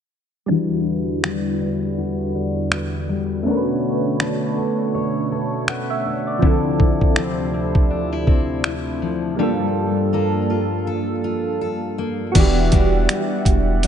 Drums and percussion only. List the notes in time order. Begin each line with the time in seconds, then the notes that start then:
1.24 finger snap
2.72 finger snap
4.20 finger snap
5.68 finger snap
6.42 kick
6.80 kick
7.01 kick
7.16 finger snap
7.75 kick
8.27 kick
8.64 finger snap
12.35 kick, closed hi-hat, crash
12.72 kick, closed hi-hat
13.09 finger snap, closed hi-hat
13.45 kick, closed hi-hat
13.83 closed hi-hat